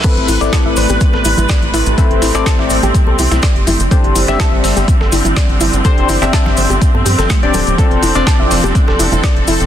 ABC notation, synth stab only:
X:1
M:4/4
L:1/16
Q:1/4=124
K:Am
V:1 name="Synth stab"
[CEAB]3 [CEAd]12- [CEAd] | [CEAB]3 [CEAd]12- [CEAd] | [CDGc]3 [CDGe]12- [CDGe] | [CDGc]3 [CDGe]8- [CDGe]2 [CDGd]3 |
[CDFA]3 [CDFd]12- [CDFd] |]